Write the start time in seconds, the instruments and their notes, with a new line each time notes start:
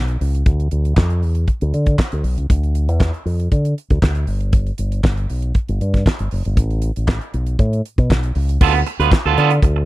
Already playing: fingered electric bass B1
0.08 closed hi-hat
0.21 fingered electric bass C#2, open hi-hat
0.35 closed hi-hat
0.46 fingered electric bass D2, kick, closed hi-hat
0.60 closed hi-hat
0.71 fingered electric bass D2, closed hi-hat
0.85 closed hi-hat
0.97 fingered electric bass F2, kick, snare, clap
1.10 closed hi-hat
1.23 fingered electric bass E2, open hi-hat
1.35 closed hi-hat
1.48 kick, closed hi-hat
1.61 fingered electric bass D2, closed hi-hat
1.74 fingered electric bass D3, closed hi-hat
1.86 kick, closed hi-hat
1.99 kick, snare, clap
2.12 fingered electric bass D2, closed hi-hat
2.24 fingered electric bass B1, open hi-hat
2.38 fingered electric bass C#2, closed hi-hat
2.50 fingered electric bass D2, kick, closed hi-hat
2.63 closed hi-hat
2.75 closed hi-hat
2.89 fingered electric bass E2, closed hi-hat
3.00 kick, snare, clap
3.14 closed hi-hat
3.25 fingered electric bass F2, open hi-hat
3.40 closed hi-hat
3.52 fingered electric bass D3, kick, closed hi-hat
3.65 closed hi-hat
3.78 closed hi-hat
3.90 fingered electric bass D2, kick, closed hi-hat
4.02 fingered electric bass D2, kick, snare, clap
4.15 closed hi-hat
4.27 fingered electric bass G1, open hi-hat
4.41 closed hi-hat
4.53 kick, closed hi-hat
4.67 closed hi-hat
4.78 fingered electric bass G1, closed hi-hat
4.92 closed hi-hat
5.04 fingered electric bass G1, kick, snare, clap
5.17 closed hi-hat
5.30 fingered electric bass B1, open hi-hat
5.42 closed hi-hat
5.55 kick, closed hi-hat
5.68 fingered electric bass G1, closed hi-hat
5.81 fingered electric bass G2, closed hi-hat
5.94 kick, snare, closed hi-hat
6.06 kick, snare, clap
6.19 fingered electric bass G1, closed hi-hat
6.31 fingered electric bass F#1, open hi-hat
6.45 fingered electric bass G1, closed hi-hat
6.57 fingered electric bass A1, kick, closed hi-hat
6.71 closed hi-hat
6.82 closed hi-hat
6.96 fingered electric bass A1, closed hi-hat
7.08 kick, snare, clap
7.21 closed hi-hat
7.34 fingered electric bass B1, closed hi-hat
7.47 closed hi-hat
7.59 fingered electric bass A2, kick, closed hi-hat
7.73 closed hi-hat
7.85 closed hi-hat
7.98 fingered electric bass B2, kick, closed hi-hat
8.10 fingered electric bass B1, kick, snare, clap
8.23 closed hi-hat
8.35 fingered electric bass C#2, open hi-hat
8.49 closed hi-hat
8.61 fingered electric bass D2, clean electric guitar B3 F4 A4, kick, crash
8.74 muted clean electric guitar stroke, closed hi-hat
8.86 muted clean electric guitar stroke, closed hi-hat
8.99 fingered electric bass D2, clean electric guitar B3 F4 B4, closed hi-hat
9.11 muted clean electric guitar stroke, kick, snare, clap
9.25 fingered electric bass D2, clean electric guitar B3 F4 A4
9.37 fingered electric bass D3, clean electric guitar B3 F4 A4, closed hi-hat
9.50 muted clean electric guitar stroke, closed hi-hat
9.62 fingered electric bass D2, muted clean electric guitar stroke, kick, closed hi-hat
9.76 muted clean electric guitar stroke